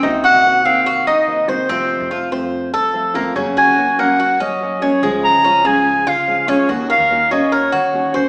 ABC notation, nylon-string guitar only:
X:1
M:4/4
L:1/8
Q:1/4=144
K:Fphr
V:1 name="Nylon-string guitar"
[C,E,B,CG]2 [E,B,CG] [E,B,CG]2 z [E,B,CG] [E,B,CG] | [C,F,=A,CF]2 [F,A,CF] [F,A,CF]2 z [F,A,CF] [F,A,CF] | [D,G,B,DG]2 [G,B,DG] [G,B,DG]2 z [G,B,DG] [G,B,DG] | [D,F,A,DF]2 [F,A,DF] [F,A,DF]2 z [F,A,DF] [F,A,DF] |
[E,B,DG]2 [E,B,DG] [B,DG]2 z [E,B,DG] [B,DG] |]